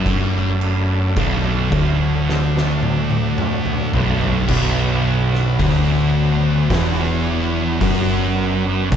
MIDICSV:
0, 0, Header, 1, 5, 480
1, 0, Start_track
1, 0, Key_signature, 2, "minor"
1, 0, Tempo, 1107420
1, 26, Time_signature, 4, 2, 24, 8
1, 3886, End_track
2, 0, Start_track
2, 0, Title_t, "Tonewheel organ"
2, 0, Program_c, 0, 16
2, 0, Note_on_c, 0, 54, 65
2, 0, Note_on_c, 0, 57, 58
2, 0, Note_on_c, 0, 62, 73
2, 1928, Note_off_c, 0, 57, 0
2, 1930, Note_off_c, 0, 62, 0
2, 1931, Note_off_c, 0, 54, 0
2, 1937, Note_on_c, 0, 59, 63
2, 1938, Note_on_c, 0, 62, 71
2, 1940, Note_on_c, 0, 54, 64
2, 3886, Note_off_c, 0, 54, 0
2, 3886, Note_off_c, 0, 59, 0
2, 3886, Note_off_c, 0, 62, 0
2, 3886, End_track
3, 0, Start_track
3, 0, Title_t, "Distorted electric guitar"
3, 0, Program_c, 1, 30
3, 0, Note_on_c, 1, 42, 102
3, 499, Note_off_c, 1, 42, 0
3, 503, Note_on_c, 1, 35, 102
3, 737, Note_off_c, 1, 35, 0
3, 742, Note_on_c, 1, 38, 101
3, 1697, Note_off_c, 1, 38, 0
3, 1703, Note_on_c, 1, 35, 98
3, 1938, Note_off_c, 1, 35, 0
3, 1946, Note_on_c, 1, 35, 104
3, 2420, Note_off_c, 1, 35, 0
3, 2424, Note_on_c, 1, 38, 110
3, 2898, Note_off_c, 1, 38, 0
3, 2904, Note_on_c, 1, 40, 117
3, 3379, Note_off_c, 1, 40, 0
3, 3382, Note_on_c, 1, 42, 113
3, 3858, Note_off_c, 1, 42, 0
3, 3867, Note_on_c, 1, 35, 105
3, 3886, Note_off_c, 1, 35, 0
3, 3886, End_track
4, 0, Start_track
4, 0, Title_t, "Picked electric bass"
4, 0, Program_c, 2, 34
4, 0, Note_on_c, 2, 30, 92
4, 489, Note_off_c, 2, 30, 0
4, 504, Note_on_c, 2, 23, 84
4, 729, Note_off_c, 2, 23, 0
4, 746, Note_on_c, 2, 26, 91
4, 1689, Note_off_c, 2, 26, 0
4, 1708, Note_on_c, 2, 23, 88
4, 1931, Note_off_c, 2, 23, 0
4, 1946, Note_on_c, 2, 23, 95
4, 2410, Note_off_c, 2, 23, 0
4, 2428, Note_on_c, 2, 26, 82
4, 2890, Note_off_c, 2, 26, 0
4, 2906, Note_on_c, 2, 28, 103
4, 3369, Note_off_c, 2, 28, 0
4, 3385, Note_on_c, 2, 30, 91
4, 3849, Note_off_c, 2, 30, 0
4, 3867, Note_on_c, 2, 23, 90
4, 3886, Note_off_c, 2, 23, 0
4, 3886, End_track
5, 0, Start_track
5, 0, Title_t, "Drums"
5, 26, Note_on_c, 9, 36, 102
5, 28, Note_on_c, 9, 49, 74
5, 70, Note_off_c, 9, 36, 0
5, 71, Note_off_c, 9, 49, 0
5, 265, Note_on_c, 9, 49, 59
5, 309, Note_off_c, 9, 49, 0
5, 505, Note_on_c, 9, 49, 77
5, 506, Note_on_c, 9, 36, 105
5, 549, Note_off_c, 9, 36, 0
5, 549, Note_off_c, 9, 49, 0
5, 746, Note_on_c, 9, 36, 107
5, 747, Note_on_c, 9, 49, 61
5, 789, Note_off_c, 9, 36, 0
5, 790, Note_off_c, 9, 49, 0
5, 995, Note_on_c, 9, 38, 59
5, 1038, Note_off_c, 9, 38, 0
5, 1115, Note_on_c, 9, 38, 57
5, 1158, Note_off_c, 9, 38, 0
5, 1225, Note_on_c, 9, 48, 72
5, 1269, Note_off_c, 9, 48, 0
5, 1345, Note_on_c, 9, 48, 69
5, 1389, Note_off_c, 9, 48, 0
5, 1465, Note_on_c, 9, 47, 85
5, 1509, Note_off_c, 9, 47, 0
5, 1585, Note_on_c, 9, 45, 81
5, 1628, Note_off_c, 9, 45, 0
5, 1705, Note_on_c, 9, 43, 104
5, 1749, Note_off_c, 9, 43, 0
5, 1827, Note_on_c, 9, 43, 80
5, 1870, Note_off_c, 9, 43, 0
5, 1944, Note_on_c, 9, 57, 122
5, 1945, Note_on_c, 9, 36, 114
5, 1987, Note_off_c, 9, 57, 0
5, 1989, Note_off_c, 9, 36, 0
5, 2315, Note_on_c, 9, 38, 35
5, 2358, Note_off_c, 9, 38, 0
5, 2424, Note_on_c, 9, 46, 55
5, 2425, Note_on_c, 9, 36, 108
5, 2468, Note_off_c, 9, 36, 0
5, 2468, Note_off_c, 9, 46, 0
5, 2905, Note_on_c, 9, 46, 63
5, 2906, Note_on_c, 9, 36, 115
5, 2913, Note_on_c, 9, 38, 115
5, 2948, Note_off_c, 9, 46, 0
5, 2949, Note_off_c, 9, 36, 0
5, 2957, Note_off_c, 9, 38, 0
5, 3386, Note_on_c, 9, 36, 102
5, 3386, Note_on_c, 9, 46, 64
5, 3429, Note_off_c, 9, 36, 0
5, 3429, Note_off_c, 9, 46, 0
5, 3865, Note_on_c, 9, 46, 68
5, 3866, Note_on_c, 9, 36, 107
5, 3886, Note_off_c, 9, 36, 0
5, 3886, Note_off_c, 9, 46, 0
5, 3886, End_track
0, 0, End_of_file